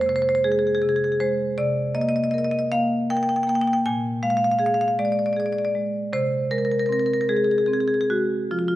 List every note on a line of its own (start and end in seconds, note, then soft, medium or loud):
0.00 1.53 F2 medium
0.00 0.29 G#3 soft
0.00 0.09 C5 medium
0.06 0.67 C3 soft
0.06 0.16 C5 medium
0.16 0.22 C5 medium
0.22 0.29 C5 medium
0.29 0.35 C5 medium
0.35 0.40 C5 medium
0.44 1.05 G#3 soft
0.44 0.52 G#4 medium
0.52 0.59 G#4 medium
0.59 0.67 G#4 medium
0.67 0.75 G#4 medium
0.75 0.82 G#4 medium
0.82 1.42 C3 soft
0.82 0.89 G#4 medium
0.89 0.96 G#4 medium
0.96 1.04 G#4 medium
1.04 1.12 G#4 medium
1.12 1.17 G#4 medium
1.20 1.58 G#3 soft
1.20 1.56 C5 medium
1.58 3.80 C3 medium
1.58 1.94 D5 medium
1.95 2.55 A#3 soft
1.95 2.01 D#5 medium
2.01 2.09 D#5 medium
2.09 2.16 D#5 medium
2.16 2.24 D#5 medium
2.24 2.31 D#5 medium
2.31 2.94 A#4 soft
2.31 2.38 D#5 medium
2.38 2.44 D#5 medium
2.44 2.51 D#5 medium
2.51 2.59 D#5 medium
2.59 2.67 D#5 medium
2.72 3.32 A#3 soft
2.72 3.07 F5 medium
3.10 3.70 A#4 soft
3.10 3.17 G5 medium
3.17 3.23 G5 medium
3.23 3.29 G5 medium
3.29 3.36 G5 medium
3.36 3.43 G5 medium
3.43 3.49 G5 medium
3.47 3.84 A#3 soft
3.47 3.55 G5 medium
3.55 3.61 G5 medium
3.61 3.67 G5 medium
3.67 3.73 G5 medium
3.73 3.82 G5 medium
3.86 6.09 A#2 medium
3.86 4.21 G#5 medium
4.23 4.82 G#3 soft
4.23 4.30 F5 medium
4.30 4.37 F5 medium
4.37 4.44 F5 medium
4.44 4.52 F5 medium
4.52 4.59 F5 medium
4.59 5.20 G#4 soft
4.59 4.66 F5 medium
4.66 4.74 F5 medium
4.74 4.81 F5 medium
4.81 4.88 F5 medium
4.88 4.95 F5 medium
4.99 5.59 G#3 medium
4.99 5.05 D5 medium
5.05 5.12 D5 medium
5.12 5.19 D5 medium
5.19 5.26 D5 medium
5.26 5.33 D5 medium
5.33 5.97 G#4 soft
5.33 5.40 D5 medium
5.40 5.46 D5 medium
5.46 5.53 D5 medium
5.53 5.58 D5 medium
5.58 5.65 D5 medium
5.65 5.71 D5 medium
5.75 6.13 G#3 soft
6.13 8.47 C3 medium
6.13 6.50 C5 medium
6.51 7.13 G#3 soft
6.51 6.58 A#4 medium
6.58 6.65 A#4 medium
6.65 6.71 A#4 medium
6.71 6.79 A#4 medium
6.79 6.86 A#4 medium
6.86 7.52 C4 soft
6.86 6.93 A#4 medium
6.93 7.00 A#4 medium
7.00 7.06 A#4 medium
7.06 7.13 A#4 medium
7.13 7.21 A#4 medium
7.21 7.26 A#4 medium
7.29 7.93 G#3 soft
7.29 7.37 G#4 medium
7.37 7.44 G#4 medium
7.44 7.51 G#4 medium
7.51 7.58 G#4 medium
7.58 7.66 G#4 medium
7.66 8.33 C4 soft
7.66 7.74 G#4 medium
7.74 7.80 G#4 medium
7.80 7.88 G#4 medium
7.88 7.94 G#4 medium
7.94 8.01 G#4 medium
8.01 8.06 G#4 medium
8.10 8.50 G#3 soft
8.10 8.49 F#4 medium
8.51 8.76 F3 soft
8.51 8.59 F4 medium
8.59 8.68 F4 soft
8.68 8.76 F4 medium